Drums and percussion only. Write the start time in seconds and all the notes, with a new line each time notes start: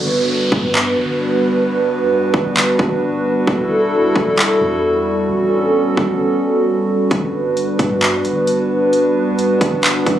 0.52 kick
0.75 clap
2.34 kick
2.57 clap
2.79 kick
3.47 kick
4.16 kick
4.39 clap
5.97 kick
7.11 kick, closed hi-hat
7.57 closed hi-hat
7.79 kick, closed hi-hat
8.02 clap, closed hi-hat
8.25 closed hi-hat
8.47 closed hi-hat
8.93 closed hi-hat
9.39 closed hi-hat
9.61 kick, closed hi-hat
9.84 clap, closed hi-hat
10.06 kick, closed hi-hat